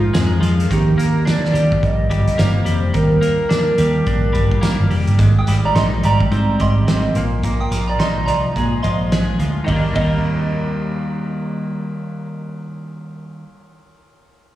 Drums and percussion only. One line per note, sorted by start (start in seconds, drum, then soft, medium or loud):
0.14 snare loud
0.14 closed hi-hat loud
0.14 tambourine medium
0.43 closed hi-hat medium
0.60 closed hi-hat medium
0.71 kick loud
0.71 closed hi-hat loud
0.99 closed hi-hat medium
1.27 snare medium
1.27 closed hi-hat medium
1.27 tambourine medium
1.45 snare soft
1.55 closed hi-hat medium
1.72 kick medium
1.83 kick loud
1.83 closed hi-hat medium
2.11 kick medium
2.11 closed hi-hat medium
2.28 closed hi-hat medium
2.39 snare loud
2.39 closed hi-hat loud
2.39 tambourine medium
2.66 closed hi-hat medium
2.94 kick loud
2.94 closed hi-hat medium
3.22 closed hi-hat medium
3.50 snare medium
3.50 closed hi-hat medium
3.50 tambourine medium
3.78 closed hi-hat medium
4.06 kick medium
4.06 closed hi-hat medium
4.35 kick medium
4.35 closed hi-hat medium
4.51 kick medium
4.63 snare loud
4.63 closed hi-hat medium
4.63 tambourine medium
4.91 open hi-hat soft
5.07 closed hi-hat medium
5.19 kick loud
5.19 closed hi-hat medium
5.47 closed hi-hat medium
5.76 snare loud
5.76 closed hi-hat medium
6.03 closed hi-hat medium
6.20 kick medium
6.32 kick medium
6.32 closed hi-hat medium
6.60 kick medium
6.60 closed hi-hat medium
6.88 snare loud
6.88 closed hi-hat medium
7.15 closed hi-hat medium
7.43 kick loud
7.43 closed hi-hat loud
7.72 closed hi-hat medium
8.00 snare medium
8.00 closed hi-hat medium
8.28 closed hi-hat medium
8.56 kick medium
8.56 closed hi-hat medium
8.84 kick medium
8.84 closed hi-hat medium
9.12 snare loud
9.12 closed hi-hat medium
9.40 closed hi-hat medium
9.68 kick medium
9.68 ride medium
9.95 kick medium
9.95 ride medium